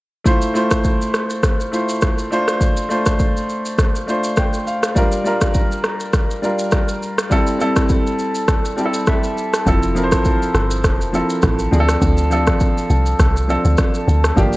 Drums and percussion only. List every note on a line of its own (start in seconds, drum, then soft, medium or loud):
0.26 kick loud
0.26 shaker medium
0.41 shaker medium
0.55 shaker medium
0.71 kick medium
0.71 cross-stick medium
0.71 shaker medium
0.84 kick medium
0.84 shaker medium
1.02 shaker soft
1.14 cross-stick medium
1.14 shaker soft
1.30 shaker medium
1.43 kick loud
1.43 cross-stick medium
1.43 shaker medium
1.60 shaker medium
1.73 shaker medium
1.89 shaker medium
2.01 kick medium
2.01 cross-stick medium
2.01 shaker medium
2.18 shaker medium
2.32 shaker medium
2.48 cross-stick medium
2.48 shaker medium
2.61 kick loud
2.61 shaker medium
2.77 shaker medium
2.91 shaker medium
3.06 kick medium
3.06 cross-stick medium
3.06 shaker medium
3.19 kick medium
3.19 shaker medium
3.37 shaker soft
3.49 shaker soft
3.65 shaker medium
3.78 kick loud
3.78 cross-stick medium
3.78 shaker medium
3.96 shaker medium
4.09 shaker medium
4.24 shaker medium
4.36 kick medium
4.36 cross-stick medium
4.36 shaker medium
4.53 shaker medium
4.67 shaker medium
4.83 cross-stick medium
4.83 shaker medium
4.96 kick loud
4.96 shaker medium
5.12 shaker medium
5.26 shaker medium
5.41 kick medium
5.41 cross-stick medium
5.41 shaker medium
5.54 kick medium
5.54 shaker medium
5.72 shaker soft
5.84 cross-stick medium
5.84 shaker soft
6.00 shaker medium
6.13 kick loud
6.13 cross-stick medium
6.13 shaker medium
6.31 shaker medium
6.43 shaker medium
6.59 shaker medium
6.71 kick medium
6.71 cross-stick medium
6.71 shaker medium
6.88 shaker medium
7.03 shaker medium
7.18 cross-stick loud
7.18 shaker medium
7.31 kick loud
7.31 shaker medium
7.47 shaker medium
7.61 shaker medium
7.76 kick medium
7.76 cross-stick medium
7.76 shaker medium
7.89 kick medium
7.89 shaker medium
8.07 shaker soft
8.19 shaker soft
8.35 shaker medium
8.48 kick loud
8.48 cross-stick medium
8.48 shaker medium
8.66 shaker medium
8.78 shaker medium
8.94 shaker medium
9.07 kick medium
9.07 cross-stick medium
9.07 shaker medium
9.24 shaker medium
9.38 shaker medium
9.53 cross-stick medium
9.53 shaker medium
9.66 kick loud
9.66 shaker medium
9.82 shaker medium
9.96 shaker medium
10.12 kick medium
10.12 cross-stick medium
10.12 shaker medium
10.25 kick medium
10.25 shaker medium
10.42 shaker soft
10.55 cross-stick medium
10.55 shaker soft
10.71 shaker medium
10.84 kick loud
10.84 cross-stick medium
10.84 shaker medium
11.01 shaker medium
11.14 shaker medium
11.29 shaker medium
11.42 kick medium
11.42 cross-stick medium
11.42 shaker medium
11.59 shaker medium
11.73 shaker medium
11.89 cross-stick medium
11.89 shaker medium
12.02 kick loud
12.02 shaker medium
12.18 shaker medium
12.32 shaker medium
12.47 kick medium
12.47 cross-stick medium
12.47 shaker medium
12.60 kick medium
12.60 shaker medium
12.78 shaker soft
12.90 shaker soft
13.06 shaker medium
13.19 kick loud
13.19 cross-stick medium
13.19 shaker medium
13.37 shaker medium
13.50 shaker medium
13.65 shaker medium
13.77 kick medium
13.77 cross-stick medium
13.77 shaker medium
13.94 shaker medium
14.09 shaker medium
14.24 cross-stick loud
14.24 shaker medium
14.37 kick loud
14.37 shaker medium
14.53 shaker medium